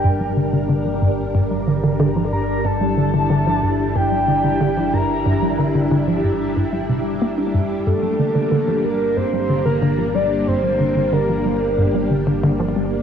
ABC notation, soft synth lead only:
X:1
M:4/4
L:1/16
Q:1/4=92
K:Gdor
V:1 name="Soft synth lead"
g4 z8 z2 b2 | a8 g6 b2- | b4 z12 | A6 B2 c3 B3 d2 |
c4 B6 z6 |]